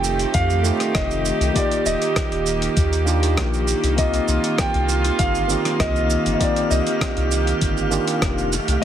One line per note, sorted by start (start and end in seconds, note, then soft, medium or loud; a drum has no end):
0.00 0.26 F1 medium
0.00 8.84 D#3 medium
0.00 0.60 A3 medium
0.00 1.53 A3 medium
0.00 0.61 C4 medium
0.00 0.62 D#4 medium
0.00 0.61 F4 medium
0.00 0.62 G4 medium
0.00 3.94 G4 loud
0.00 1.52 C5 medium
0.00 0.36 G5 loud
0.00 cabasa medium
0.19 closed hi-hat soft
0.19 cabasa soft
0.34 0.71 F2 medium
0.34 0.97 F5 loud
0.34 kick loud
0.34 closed hi-hat medium
0.34 cabasa soft
0.50 cabasa soft
0.63 1.51 A3 medium
0.63 1.52 C4 medium
0.63 1.53 D#4 medium
0.63 1.52 F4 medium
0.63 cabasa medium
0.67 1.53 G4 medium
0.80 cross-stick soft
0.80 closed hi-hat soft
0.80 cabasa soft
0.95 1.32 F1 medium
0.95 1.57 D#5 loud
0.95 kick loud
0.95 cross-stick loud
0.95 closed hi-hat soft
0.95 cabasa soft
1.11 cabasa soft
1.25 cabasa medium
1.41 1.50 C2 medium
1.41 closed hi-hat soft
1.41 cabasa soft
1.53 3.02 A#3 medium
1.53 8.49 A#3 medium
1.53 3.03 D#4 medium
1.53 3.04 F4 medium
1.53 1.87 D5 medium
1.53 kick loud
1.53 closed hi-hat medium
1.53 cabasa soft
1.57 3.04 G4 medium
1.71 closed hi-hat soft
1.71 cabasa soft
1.86 1.96 D#1 medium
1.86 3.03 D#5 loud
1.86 cabasa medium
2.02 closed hi-hat soft
2.02 cabasa soft
2.16 kick loud
2.16 cross-stick loud
2.16 closed hi-hat medium
2.16 cabasa medium
2.32 2.68 D#1 medium
2.32 closed hi-hat soft
2.46 cabasa medium
2.62 closed hi-hat soft
2.62 cabasa soft
2.77 3.39 D#2 medium
2.77 kick loud
2.77 closed hi-hat medium
2.77 cabasa soft
2.93 closed hi-hat soft
2.93 cabasa soft
3.05 3.93 A#3 medium
3.05 3.94 D4 medium
3.05 3.95 D#4 medium
3.05 3.95 F4 medium
3.05 cabasa medium
3.09 3.96 G4 medium
3.23 closed hi-hat soft
3.23 cabasa soft
3.37 3.74 A#1 medium
3.37 kick loud
3.37 cross-stick loud
3.37 closed hi-hat medium
3.37 cabasa soft
3.54 cabasa soft
3.68 cabasa medium
3.84 4.20 C2 medium
3.84 closed hi-hat soft
3.84 cabasa soft
3.96 5.45 A#3 medium
3.96 5.46 C4 medium
3.96 5.46 D#4 medium
3.96 6.38 F4 medium
3.96 5.47 F4 medium
3.96 4.55 D#5 medium
3.96 8.84 F5 medium
3.96 8.84 F6 medium
3.96 kick loud
3.96 closed hi-hat medium
3.96 cabasa soft
4.00 5.47 G4 medium
4.14 closed hi-hat soft
4.14 cabasa soft
4.28 4.38 C2 loud
4.28 cabasa medium
4.44 closed hi-hat soft
4.44 cabasa soft
4.58 5.21 G5 loud
4.58 kick loud
4.58 cross-stick loud
4.58 closed hi-hat medium
4.58 cabasa soft
4.74 5.11 C2 medium
4.74 closed hi-hat soft
4.89 cabasa medium
5.05 closed hi-hat soft
5.05 cabasa soft
5.19 5.56 G1 medium
5.19 5.82 F5 loud
5.19 kick loud
5.19 closed hi-hat medium
5.19 cabasa soft
5.35 cabasa soft
5.48 6.36 A#3 medium
5.48 6.37 C4 medium
5.48 6.37 D#4 medium
5.48 6.38 F4 medium
5.48 cabasa medium
5.52 6.38 G4 medium
5.65 cross-stick soft
5.65 closed hi-hat soft
5.65 cabasa soft
5.80 6.17 C2 medium
5.80 6.32 D#5 loud
5.80 kick loud
5.80 cross-stick medium
5.80 closed hi-hat medium
5.80 cabasa soft
5.96 cabasa soft
6.10 cabasa medium
6.26 6.35 G1 medium
6.26 closed hi-hat soft
6.26 cabasa soft
6.34 6.40 D#5 medium
6.38 7.87 A#3 medium
6.38 7.88 C4 medium
6.38 7.88 D#4 medium
6.38 7.89 F4 medium
6.38 8.50 G4 medium
6.38 6.72 D5 medium
6.38 kick loud
6.38 closed hi-hat medium
6.38 cabasa soft
6.42 7.89 G4 medium
6.56 closed hi-hat soft
6.56 cabasa soft
6.71 6.81 C2 loud
6.71 7.88 D#5 medium
6.71 cabasa medium
6.87 closed hi-hat soft
6.87 cabasa soft
7.01 kick loud
7.01 cross-stick medium
7.01 closed hi-hat medium
7.01 cabasa soft
7.17 7.53 C2 medium
7.17 closed hi-hat soft
7.31 cabasa medium
7.47 closed hi-hat soft
7.47 cabasa soft
7.61 7.98 G1 medium
7.61 kick loud
7.61 closed hi-hat medium
7.61 cabasa soft
7.77 cabasa soft
7.91 8.50 A#3 medium
7.91 8.50 D4 medium
7.91 8.51 D#4 medium
7.91 8.51 F4 medium
7.91 8.51 G4 medium
7.91 cabasa medium
8.07 closed hi-hat soft
8.07 cabasa soft
8.22 8.59 F1 loud
8.22 kick loud
8.22 cross-stick medium
8.22 closed hi-hat medium
8.22 cabasa soft
8.38 cabasa soft
8.53 8.84 A3 medium
8.53 8.84 G4 medium
8.53 cabasa medium
8.68 8.77 C2 medium
8.68 closed hi-hat soft
8.68 cabasa soft
8.80 8.84 A3 medium